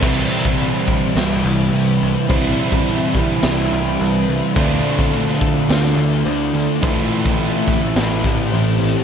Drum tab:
CC |x---------------|----------------|----------------|----------------|
HH |--o-o-o-o-o-o-o-|o-o-o-o-o-o-o-o-|o-o-o-o-o-o-o-o-|o-o-o-o-o-o-o-o-|
SD |--------o-------|--------o-------|-----o--o-------|--------o-------|
BD |o--o--o---------|o--o--o---------|o--o--o---------|o--o--o---o-----|